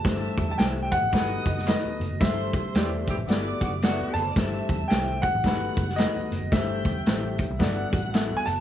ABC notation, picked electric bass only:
X:1
M:4/4
L:1/16
Q:"Swing" 1/4=111
K:Ador
V:1 name="Picked electric bass" clef=bass
G,,,2 E,,2 C,,3 A,,, G,,,2 F,,,3 z F,,, F,,, | G,,,4 E,,3 A,,, G,,,2 F,,,4 F,,,2 | G,,,2 E,,2 C,,3 A,,, G,,,2 F,,,3 z F,,, F,,, | G,,,2 E,,2 A,,,3 C,, G,,,2 A,,,4 F,,,2 |]